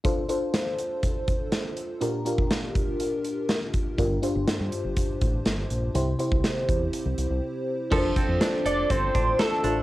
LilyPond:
<<
  \new Staff \with { instrumentName = "Analog synth lead" } { \time 4/4 \key f \major \tempo 4 = 122 r1 | r1 | r1 | r1 |
r4. d''8 c''4 a'4 | }
  \new Staff \with { instrumentName = "FM electric piano" } { \time 4/4 \key f \major <d' f' a' c''>8 <d' f' a' c''>4. r2 | <d' f' g' bes'>8 <d' f' g' bes'>4. r2 | <d' f' g' bes'>8 <d' f' g' c''>4. r2 | <c' e' g' c''>8 <c' e' g' c''>4. r2 |
<d' f' a' bes' c''>4. r2 <d' f' a' c''>8 | }
  \new Staff \with { instrumentName = "FM electric piano" } { \clef bass \time 4/4 \key f \major r1 | bes,4. r2 r8 | g,4. r2 r8 | c4. r2 r8 |
r1 | }
  \new Staff \with { instrumentName = "Clean electric guitar" } { \time 4/4 \key f \major r1 | r1 | r1 | r1 |
<f a'>8 c'8 d'8 a'8 c'8 d'8 a'8 d'8 | }
  \new Staff \with { instrumentName = "Fingered electric bass" } { \clef bass \time 4/4 \key f \major r1 | r1 | g,,8 r16 g,,16 r16 g,16 r16 g,,16 r8 a,,8 g,,8 bes,,8 | c,8 r16 c,16 r8 e,8 r16 c,16 c,16 c,16 r4 |
f,,8 r16 f,16 r8 f,,8 g,,8 a,,8 r8 a,,8 | }
  \new DrumStaff \with { instrumentName = "Drums" } \drummode { \time 4/4 <hh bd>8 hh8 <hh sn>8 hh8 <hh bd>8 <hh bd>8 <hh sn>8 hh8 | hh8 hh16 bd16 <hh sn>8 <hh bd>8 hh8 hh8 <hh sn>8 <hh bd>8 | <hh bd>8 hh8 <hh sn>8 hh8 <hh bd>8 <hh bd>8 <hh sn>8 hh8 | hh8 hh16 bd16 <hh sn>8 <hh bd>8 hh8 hh8 r4 |
<cymc bd>8 <hh bd>8 <hh sn>8 hh8 <hh bd>8 <hh bd>8 <hh sn>8 hh8 | }
>>